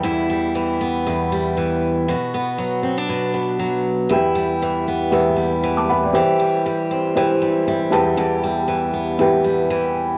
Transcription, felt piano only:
4.10 E4 G4 B4 G5
5.11 E4 G4 B4 E5
5.77 A5 D6
5.89 F#5 B5
6.03 D5 G5
6.13 E4 G4 C5 G5
7.15 E4 G4 C5 G5
7.68 E5
7.90 E4 G4 B4 G5 A5
9.19 E4 G4 B4 G5

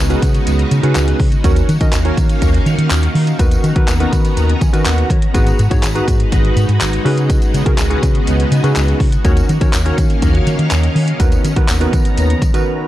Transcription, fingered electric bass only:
0.00 C#2
0.22 C#3
0.47 C#2
0.71 C#3
0.83 C#3
0.96 C#2
1.20 C#3
1.44 D#2
1.69 D#3
1.93 D#2
2.17 D#3
2.42 D#2
2.66 D#3
2.78 D#3
2.91 D#2
3.15 D#3
3.39 D#2
3.64 D#3
3.88 D#2
4.12 D#3
4.37 D#2
4.61 D#3
4.74 D#3
4.86 D#2
5.10 D#3
5.35 G#1
5.59 G#2
5.71 G#2
5.83 G#1
6.08 G#2
6.32 G#1
6.56 G#2
6.69 G#2
6.81 G#1
7.05 C#3
7.54 C#3
7.78 C#2
8.03 C#3
8.27 C#2
8.51 C#3
8.64 C#3
8.76 C#2
9.00 C#3
9.25 D#2
9.49 D#3
9.73 D#2
9.98 D#3
10.22 D#2
10.47 D#3
10.59 D#3
10.71 D#2
10.95 D#3
11.20 D#2
11.44 D#3
11.56 D#3
11.69 D#2
11.93 D#3
12.17 D#2
12.42 D#3
12.54 D#3

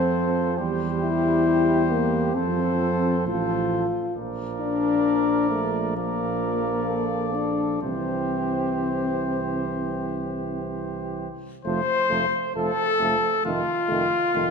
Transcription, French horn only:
Already playing: C4
1.00 E4
1.90 A#3
2.34 C4
3.28 F4
4.60 D4
5.50 A3
5.96 A#3
7.34 D4
7.82 C4
11.65 A3
12.10 A3
12.55 A3
13.00 A3
13.45 A3
13.88 A3
14.33 A3

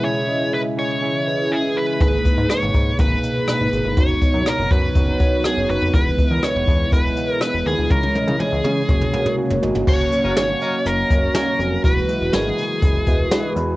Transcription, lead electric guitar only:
0.05 C#5
0.54 B4
0.79 C#5
1.52 G#4
1.77 B4
2.02 B4
2.50 C#5
3.00 B4
3.49 B4
3.98 C#5
4.48 A#4
4.72 B4
5.46 G#4
5.70 B4
5.95 B4
6.32 A#4
6.44 C#5
6.93 B4
7.30 A#4
7.42 B4
7.67 G#4
7.91 A#4
8.40 G#4
9.88 C#5
10.37 C#5
10.86 A#4
11.36 A#4
11.85 B4
12.34 G#4

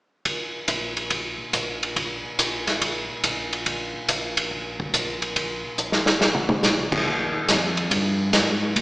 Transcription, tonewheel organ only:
0.68 A#1
1.53 A#1
2.39 A#1
3.24 A#1
4.09 A#1
4.93 A#1
5.78 A#1
6.63 A#1
7.06 D#2
7.49 F2
7.91 G2
8.33 G#2
8.76 A2

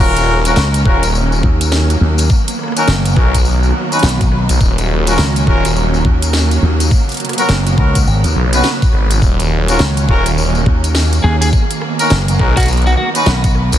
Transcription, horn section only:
0.00 C#4 F4 F#4 A#4
0.46 C#4 F4 F#4 A#4
0.85 C#4 F4 F#4 A#4
2.76 C#4 D#4 F#4 A#4
3.17 C#4 D#4 F#4 A#4
3.92 C#4 D#4 F#4 B4
5.07 C#4 F4 F#4 A#4
5.47 C#4 F4 F#4 A#4
7.38 B3 C#4 F#4 A#4
7.78 B3 C#4 F#4 A#4
8.53 B3 C#4 F#4 B4
9.69 C#4 F4 F#4 A#4
10.09 C#4 F4 F#4 A#4
12.00 C#4 D#4 F#4 A#4
12.39 C#4 D#4 F#4 A#4
13.15 C#4 D#4 F#4 B4

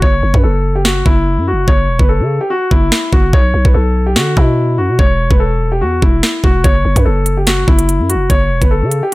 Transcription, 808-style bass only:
0.02 F#1
0.23 F#1
0.34 F#2
0.44 F#1
1.06 F#1
1.37 F#2
1.53 F#1
1.68 F#1
1.88 E1
1.99 F#1
2.20 C#3
2.71 F#1
3.13 F#1
3.33 B1
3.54 B1
3.65 B1
3.75 B1
4.16 D3
4.37 B2
4.78 F#2
4.89 B2
4.99 E1
5.31 E1
5.82 E2
6.02 E1
6.44 E1
6.64 F#1
6.85 F#1
6.96 F#2
7.06 F#1
7.68 F#1
8.00 F#2
8.15 F#1
8.30 F#1
8.51 E1
8.62 F#1
8.82 C#3

